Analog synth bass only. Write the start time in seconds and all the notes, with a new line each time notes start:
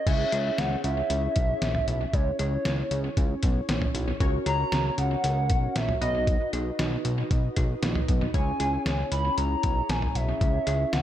0.07 C#2
0.32 C#2
0.58 C#2
0.84 C#2
1.10 C#2
1.36 B1
1.62 A#1
1.88 B1
2.13 C#2
2.39 C#2
2.65 C#2
2.91 C#2
3.17 C#2
3.43 B1
3.69 A#1
3.95 B1
4.20 C#2
4.46 C#2
4.72 C#2
4.98 C#2
5.24 C#2
5.50 B1
5.76 A#1
6.01 B1
6.53 B1
6.79 B1
7.05 B1
7.31 B1
7.57 B1
7.82 A#1
8.08 B1
8.34 C#2
8.60 C#2
8.86 C#2
9.12 C#2
9.38 C#2
9.64 B1
9.89 A#1
10.15 B1
10.41 C#2
10.67 C#2
10.93 C#2